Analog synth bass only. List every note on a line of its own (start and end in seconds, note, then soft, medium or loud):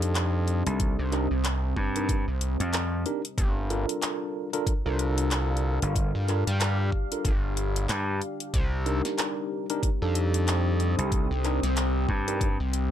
0.00 0.64 F2 loud
0.99 1.28 C2 medium
1.31 1.75 C2 loud
2.28 2.57 C2 loud
3.38 3.86 G1 medium
4.86 5.80 C2 loud
6.15 6.44 G2 medium
6.47 6.91 G2 loud
7.25 7.87 G1 loud
8.54 9.02 C2 loud
10.02 10.96 F2 loud
11.31 11.60 C2 medium
11.63 12.07 C2 loud
12.60 12.89 C2 medium